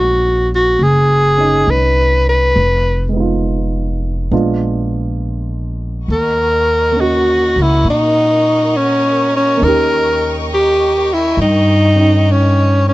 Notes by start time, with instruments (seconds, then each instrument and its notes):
Already playing: upright bass A#1, grand piano G#3 C#4 D#4 F#4, tenor saxophone F#4
0.55 tenor saxophone F#4
0.79 upright bass F#1
0.83 tenor saxophone G#4
1.37 grand piano C#4 D#4
1.67 upright bass C2, tenor saxophone B4
2.29 tenor saxophone B4
2.56 upright bass F1
3.09 grand piano G#3
3.13 grand piano B3 D#4
3.20 grand piano F4
4.31 upright bass A#1, grand piano G#3 B3 D4 F4
6.07 upright bass D#2, string section A#4 D#5 F#5 C#6
6.12 tenor saxophone A#4
6.92 grand piano A#3
6.96 grand piano C#4 D#5
7.01 tenor saxophone F#4, grand piano F#4
7.56 upright bass C#2
7.62 tenor saxophone E4
7.84 upright bass A#2
7.90 tenor saxophone D#4
8.77 tenor saxophone C#4
9.37 tenor saxophone C#4
9.57 grand piano A#3 C#4
9.62 upright bass D#2, grand piano D#3, tenor saxophone A#4, string section G5
9.68 grand piano G4
10.54 tenor saxophone G4
11.13 tenor saxophone E4
11.37 upright bass G2
11.42 tenor saxophone D#4
11.96 grand piano C#4 D#4
12.32 tenor saxophone C#4
12.89 tenor saxophone C#4